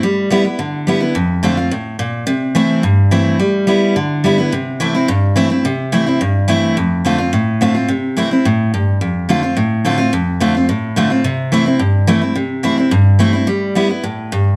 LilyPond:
\new Staff \with { instrumentName = "Steel-string acoustic guitar" } { \time 4/4 \key c \major \tempo 4 = 214 << { r4 <g b e'>8 <b e'>8 r4 <g b e'>8 <b e'>8 | r4 <d a c' f'>8 <c' f'>8 r2 | r4 <e a c' e'>4 r4 <e a c' e'>4 | r4 <g b e'>4 r4 <g b e'>8 <b e'>8 |
r4 <e a c' e'>8 <c' e'>8 r4 <e a c' e'>8 <c' e'>8 | r4 <e a c' e'>8 <c' e'>8 r4 <e a c' e'>4 | r4 <d a c' f'>8 <c' f'>8 r4 <d a c' f'>8 <c' f'>8 | r4 <e a c' e'>8 <c' e'>8 r2 |
r4 <d a c' f'>8 <c' f'>8 r4 <d a c' f'>8 <c' f'>8 | r4 <d a c' f'>8 <c' f'>8 r4 <d a c' f'>8 <c' f'>8 | r4 <e a c' e'>8 <c' e'>8 r4 <e a c' e'>8 <c' e'>8 | r4 <e a c' e'>8 <c' e'>8 r4 <e a c' e'>8 <c' e'>8 |
r4 <g b e'>8 <b e'>8 r2 | } \\ { g2 d2 | f,2 a,4 bes,4 | c2 g,2 | g2 d2 |
c2 g,2 | c2 g,2 | f,2 a,2 | c2 a,4 g,4 |
f,2 a,2 | f,2 a,2 | c2 g,2 | c2 g,2 |
g2 a,4 g,4 | } >> }